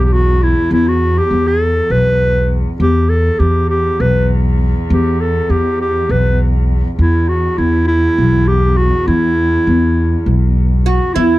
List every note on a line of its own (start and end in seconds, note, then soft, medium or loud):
0.00 0.53 B1 medium
0.00 2.79 E2 medium
0.05 0.15 G4 medium
0.13 0.44 F#4 medium
0.43 0.72 E4 medium
0.71 1.19 E2 medium
0.71 0.90 E4 medium
0.88 1.20 F#4 medium
1.18 1.49 G4 medium
1.31 1.79 E2 medium
1.48 1.93 A4 medium
1.90 2.63 B1 medium
1.90 2.58 B4 medium
2.80 6.97 E2 medium
2.80 3.28 E2 medium
2.80 3.11 G4 medium
3.09 3.41 A4 medium
3.39 3.88 E2 medium
3.39 3.69 G4 medium
3.70 4.02 G4 medium
4.00 4.72 B1 medium
4.00 4.30 B4 medium
4.90 5.38 E2 medium
4.90 5.22 G4 medium
5.20 5.52 A4 medium
5.50 5.98 E2 medium
5.50 5.80 G4 medium
5.81 6.12 G4 medium
6.09 6.81 B1 medium
6.09 6.40 B4 medium
6.98 11.21 E2 medium
6.98 7.47 E2 medium
6.98 7.30 E4 medium
7.28 7.59 F#4 medium
7.58 8.06 E2 medium
7.58 7.87 E4 medium
7.87 8.49 E4 medium
8.18 8.90 B1 medium
8.47 8.79 G4 medium
8.77 9.08 F#4 medium
9.07 9.55 E2 medium
9.07 10.56 E4 medium
9.67 10.15 E2 medium
10.26 10.98 B1 medium
10.86 11.15 F#4 medium
11.14 11.39 E2 medium
11.14 11.39 E4 medium